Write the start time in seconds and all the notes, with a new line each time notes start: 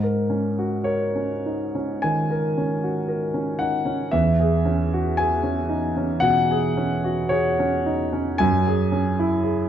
Already playing: G#2
0.03 A#4
0.30 C#4
0.58 F#4
0.84 A#4 C#5
1.16 C#4
1.46 D#4
1.75 C#4
2.02 D#3 G#5
2.30 A#4
2.58 C#4
2.83 F#4
3.08 A#4
3.34 C#4
3.59 D#4 F#5
3.85 C#4
4.11 E2 E5
4.40 G#4
4.65 C#4
4.93 F#4
5.17 G#4 G#5
5.43 C#4
5.69 D#4
5.97 C#4
6.20 B2 F#5
6.51 G#4
6.77 C#4
7.04 F#4
7.29 G#4 C#5
7.60 C#4
7.86 D#4
8.13 C#4
8.38 F#2 G#5
8.67 G#4
8.92 C#4
9.19 E4
9.43 G#4